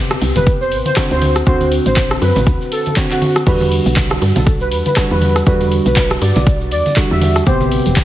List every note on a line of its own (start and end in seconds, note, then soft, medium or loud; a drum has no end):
0.00 0.17 E1 medium
0.00 0.94 C3 loud
0.00 0.94 B3 medium
0.00 0.94 G4 loud
0.11 cross-stick medium
0.11 muted conga medium
0.11 shaker soft
0.21 0.32 C2 medium
0.21 open hi-hat loud
0.36 0.73 E1 medium
0.36 0.52 B4 medium
0.36 closed hi-hat medium
0.36 high conga medium
0.36 low conga medium
0.36 shaker medium
0.47 kick loud
0.47 closed hi-hat medium
0.47 shaker medium
0.61 0.77 C5 medium
0.61 shaker soft
0.72 0.82 A1 medium
0.72 open hi-hat medium
0.85 1.02 C5 loud
0.85 closed hi-hat medium
0.85 high conga medium
0.85 shaker medium
0.96 1.44 D3 medium
0.96 1.44 C4 medium
0.96 1.44 F#4 loud
0.96 kick loud
0.96 cross-stick medium
0.96 clap loud
0.96 closed hi-hat medium
0.96 shaker medium
1.11 1.42 D2 medium
1.11 1.37 C5 loud
1.11 muted conga medium
1.11 shaker soft
1.22 open hi-hat loud
1.22 high conga medium
1.36 cross-stick medium
1.36 closed hi-hat medium
1.36 shaker medium
1.46 1.80 D2 loud
1.46 2.94 D3 medium
1.46 2.94 C4 medium
1.46 2.94 F#4 loud
1.46 1.73 C5 loud
1.46 kick loud
1.46 closed hi-hat medium
1.46 shaker medium
1.60 open hi-hat medium
1.60 high conga medium
1.60 shaker soft
1.72 open hi-hat loud
1.86 2.17 A1 loud
1.86 2.12 C5 loud
1.86 closed hi-hat medium
1.86 shaker medium
1.96 kick loud
1.96 clap loud
1.96 closed hi-hat medium
1.96 high conga medium
1.96 shaker medium
2.11 cross-stick medium
2.11 muted conga medium
2.11 shaker soft
2.22 2.32 F#2 loud
2.22 2.58 B4 medium
2.22 open hi-hat loud
2.36 2.46 A1 medium
2.36 closed hi-hat medium
2.36 high conga medium
2.36 low conga loud
2.36 shaker medium
2.46 2.57 D2 medium
2.46 kick loud
2.46 closed hi-hat medium
2.46 muted conga soft
2.46 shaker medium
2.61 shaker soft
2.72 2.98 A4 loud
2.72 open hi-hat loud
2.86 closed hi-hat medium
2.86 high conga medium
2.86 shaker medium
2.96 3.44 D3 medium
2.96 3.44 C4 medium
2.96 3.44 F#4 medium
2.96 kick loud
2.96 clap loud
2.96 closed hi-hat medium
2.96 shaker medium
3.10 3.37 F#4 medium
3.10 clap soft
3.10 muted conga medium
3.10 shaker soft
3.22 open hi-hat loud
3.22 high conga loud
3.36 cross-stick medium
3.36 closed hi-hat medium
3.36 shaker medium
3.47 3.80 E2 loud
3.47 4.94 D3 loud
3.47 4.94 G3 medium
3.47 4.94 F#4 loud
3.47 3.73 B4 loud
3.47 kick loud
3.47 closed hi-hat medium
3.47 crash medium
3.47 shaker medium
3.61 high conga medium
3.61 shaker soft
3.72 open hi-hat loud
3.86 4.17 B1 loud
3.86 closed hi-hat medium
3.86 shaker medium
3.96 kick loud
3.96 clap loud
3.96 closed hi-hat medium
3.96 high conga medium
3.96 shaker medium
4.10 cross-stick medium
4.10 muted conga medium
4.10 shaker soft
4.22 4.32 G2 medium
4.22 open hi-hat loud
4.36 4.73 B1 medium
4.36 4.52 A4 medium
4.36 closed hi-hat medium
4.36 high conga medium
4.36 low conga medium
4.36 shaker medium
4.47 kick loud
4.47 closed hi-hat medium
4.47 shaker medium
4.60 4.77 B4 medium
4.60 shaker soft
4.72 4.82 E2 medium
4.72 open hi-hat loud
4.86 5.02 B4 medium
4.86 closed hi-hat medium
4.86 high conga medium
4.86 shaker medium
4.96 5.44 D3 medium
4.96 5.44 G3 medium
4.96 5.44 F#4 medium
4.96 kick loud
4.96 cross-stick medium
4.96 clap loud
4.96 closed hi-hat medium
4.96 shaker medium
5.10 5.42 E2 loud
5.10 5.37 B4 loud
5.10 muted conga medium
5.10 shaker soft
5.21 open hi-hat loud
5.21 high conga medium
5.36 cross-stick medium
5.36 closed hi-hat medium
5.36 shaker medium
5.47 5.80 E2 loud
5.47 6.94 D3 medium
5.47 6.94 G3 medium
5.47 6.94 F#4 loud
5.47 5.73 B4 loud
5.47 kick loud
5.47 closed hi-hat medium
5.47 shaker medium
5.61 open hi-hat medium
5.61 high conga medium
5.61 shaker soft
5.72 open hi-hat loud
5.86 6.17 B1 loud
5.86 6.12 B4 loud
5.86 closed hi-hat medium
5.86 shaker medium
5.96 kick loud
5.96 clap loud
5.96 closed hi-hat medium
5.96 high conga medium
5.96 shaker medium
6.11 cross-stick medium
6.11 muted conga medium
6.11 shaker soft
6.22 6.32 G2 medium
6.22 6.58 D5 loud
6.22 open hi-hat loud
6.36 6.73 B1 loud
6.36 closed hi-hat medium
6.36 high conga medium
6.36 low conga medium
6.36 shaker medium
6.47 kick loud
6.47 closed hi-hat medium
6.47 muted conga medium
6.47 shaker medium
6.61 shaker soft
6.72 6.82 E2 medium
6.72 6.98 D5 loud
6.72 open hi-hat loud
6.86 closed hi-hat medium
6.86 high conga medium
6.86 shaker medium
6.96 7.44 D3 medium
6.96 7.44 G3 medium
6.96 7.44 F#4 loud
6.96 kick loud
6.96 clap loud
6.96 closed hi-hat medium
6.96 shaker medium
7.11 7.42 E2 medium
7.11 7.37 E5 medium
7.11 muted conga medium
7.11 shaker soft
7.21 open hi-hat loud
7.21 high conga loud
7.36 cross-stick medium
7.36 closed hi-hat medium
7.36 shaker medium
7.46 7.80 A1 loud
7.46 8.04 C3 loud
7.46 8.04 B3 medium
7.46 8.04 G4 loud
7.46 7.73 C5 loud
7.46 kick loud
7.46 closed hi-hat medium
7.46 shaker medium
7.61 high conga loud
7.61 shaker soft
7.72 open hi-hat loud
7.86 8.04 E1 loud
7.86 closed hi-hat medium
7.86 shaker medium
7.96 kick loud
7.96 clap loud
7.96 closed hi-hat medium
7.96 high conga medium
7.96 shaker medium